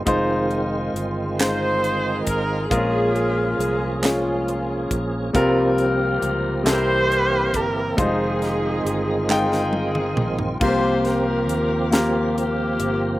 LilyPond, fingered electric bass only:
\new Staff \with { instrumentName = "Fingered electric bass" } { \clef bass \time 6/8 \key f \minor \tempo 4. = 45 f,,4 g,,4. aes,,8 | bes,,4 c,4. bes,,8 | c,4 des,8 c,4 g,,8 | f,,4 g,,4. bes,,8 |
c,4 ees,4. g,,8 | }